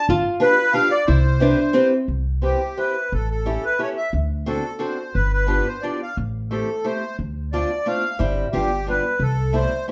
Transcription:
0.09 G1 F4
0.40 D4 F4 G4 B4
0.73 D4 F4 G4 B4 F5
0.91 D5
1.06 C2 E4 C5
1.40 C4 D4 E4 G4 B4
1.73 C4 E4 G4 B4
2.08 C2
2.42 C4 E4 G4 B4
2.77 C4 E4 G4 B4
3.12 A1 A4
3.31 A4
3.46 C#4 E4 G4 A4
3.65 B4
3.79 C#4 E4 G4 A4 C#5
3.97 E5
4.13 D2
4.46 C4 D4 F#4 A4
4.79 C4 D4 F#4 A4 C5
5.14 G1 B4
5.33 B4
5.47 B3 D4 F4 G4
5.67 C5
5.82 B3 D4 F4 G4 D5
6.02 F5
6.17 A1
6.51 A3 C4 E4 G4 A4
6.84 A3 C4 E4 G4 C5
7.19 D2
7.53 A3 C4 D4 F4 D5
7.86 A3 C4 D4 F4 F5
8.19 G1 G3 C4 E4 G4
8.52 G1 G3 B3 D4 F4 G4
8.87 G3 B3 D4 F4 B4
9.20 C2 A4
9.53 G3 A3 C4 E4 C5
9.88 A3 C4

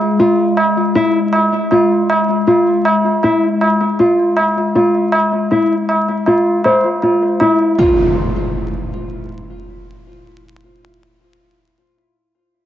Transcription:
Already playing: G#3
0.01 tabla na
0.20 F4, tabla na
0.39 tabla na
0.57 tabla na
0.77 tabla na
0.95 E4, tabla na
1.16 tabla na
1.33 tabla na
1.54 tabla na
1.71 F4, tabla na
1.92 tabla na
2.10 tabla na
2.30 tabla na
2.47 F4, tabla na
2.67 tabla na
2.85 tabla na
3.06 tabla na
3.23 E4, tabla na
3.44 tabla na
3.61 tabla na
3.81 tabla na
3.99 F4, tabla na
4.19 tabla na
4.37 tabla na
4.58 tabla na
4.75 F4, tabla na
4.95 tabla na
5.12 tabla na
5.32 tabla na
5.51 E4, tabla na
5.72 tabla na
5.89 tabla na
6.08 tabla na
6.26 F4, tabla na
6.47 tabla na
6.64 C5, tabla na
6.84 tabla na
7.02 F4, tabla na
7.22 tabla na
7.40 E4, tabla na
7.60 tabla na
7.78 F4, impact

